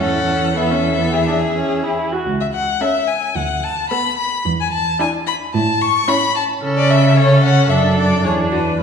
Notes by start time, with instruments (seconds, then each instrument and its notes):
0.01 cello E2, viola C#4, violin A4 F#5
0.56 viola B3, violin A4 E5
0.71 viola C#4
0.98 viola B3
1.14 violin G#4
1.27 viola D4
1.55 viola C#4
1.83 viola E4
2.12 viola F#4
2.26 cello C#2
2.41 violin E5
2.53 violin F#5
2.81 viola C#4, violin A4 E5
3.07 violin G#5
3.36 cello D2, violin F#5
3.63 violin A5
3.90 viola B3, violin A4 B5
4.18 violin B5
4.46 cello E2
4.60 violin G#5
4.73 violin A5
5.00 viola D4, violin E4 G#5
5.27 violin B5
5.54 cello A2, violin A5
5.82 violin C#6
6.08 viola C#4, violin E4 B5
6.36 violin A5
6.62 cello C#3, viola C#4, violin A4
6.77 violin D5
6.91 violin E5
7.16 viola C#4, violin A4 C#5
7.43 violin F#5
7.69 cello F#2, viola D4, violin A4 E5
7.99 violin D5
8.24 cello E2, viola D4, violin G#4 C#5
8.52 violin F#4 B4